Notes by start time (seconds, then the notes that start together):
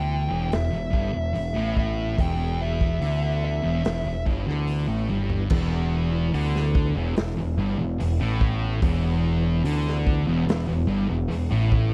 Already playing: D2 D3 E3 B3 E4 G5
0.29 E1 E2
0.51 E1 E2 E5, snare, open hi-hat
0.71 E1 E2
0.93 G1 G2, kick
1.13 E1 E2
1.35 E1 E2, open hi-hat
1.56 A1 A2
1.77 E5, kick
2.18 E1 E2 G5, kick, open hi-hat
2.61 E5
2.81 kick
3.00 D2 D3, open hi-hat
3.44 E5
3.62 E1 E2
3.84 E1 E2, snare, open hi-hat
4.04 E1 E2
4.26 G1 G2, kick
4.47 D2 D3, snare
4.67 open hi-hat
4.88 A1 A2
5.08 G1 G2, high tom
5.30 floor tom
5.50 E1 E2 E3 B3 E4, kick, crash
6.33 D2 D3, open hi-hat
6.56 snare
6.75 kick
6.95 E1 E2
7.16 E1 E2, snare, open hi-hat
7.36 E1 E2
7.57 G1 G2
7.78 E1 E2
7.99 E1 E2, open hi-hat
8.20 A1 A2
8.41 kick
8.82 E1 E2, kick, open hi-hat
9.64 D2 D3, open hi-hat
9.88 snare
10.07 kick
10.26 E1 E2
10.47 E1 E2, snare, open hi-hat
10.67 E1 E2
10.87 G1 G2
11.09 E1 E2
11.29 E1 E2, open hi-hat
11.50 A1 A2
11.72 kick